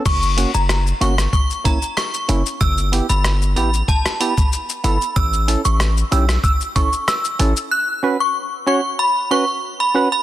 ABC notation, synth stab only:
X:1
M:4/4
L:1/8
Q:1/4=94
K:F#phr
V:1 name="Synth stab"
z [^A,CF] z [A,CF] z [A,CE] z [A,CE] | z [B,EG] z [B,EG] z [B,EG] z [B,EA] | z [CEA] z [CEG] z [CEA] z [CEA] | z [CFB] z [CFc] z [CFB] z [CFB] |]